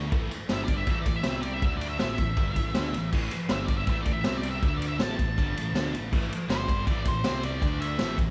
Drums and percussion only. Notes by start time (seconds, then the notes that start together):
0.12 kick, ride
0.31 ride
0.49 snare, ride
0.68 kick, ride
0.87 kick, ride
1.06 kick, ride
1.23 snare, ride
1.43 ride
1.62 kick, ride
1.81 ride
1.99 snare, ride
2.18 kick, ride
2.37 kick, ride
2.56 kick, ride
2.74 snare, ride
2.94 ride
3.13 kick, crash
3.31 ride
3.49 snare, ride
3.68 kick, ride
3.87 kick, ride
4.05 kick, ride
4.24 snare, ride
4.43 ride
4.62 kick, ride
4.82 ride
4.99 snare, ride
5.19 kick, ride
5.38 kick, ride
5.57 ride
5.75 snare, ride
5.95 ride
6.13 kick, crash
6.32 ride
6.49 snare, ride, tambourine
6.69 kick, ride
6.87 kick, ride
7.05 kick, ride
7.24 snare, ride, tambourine
7.43 ride
7.62 kick, ride
7.81 ride
7.99 snare, ride, tambourine
8.18 kick, ride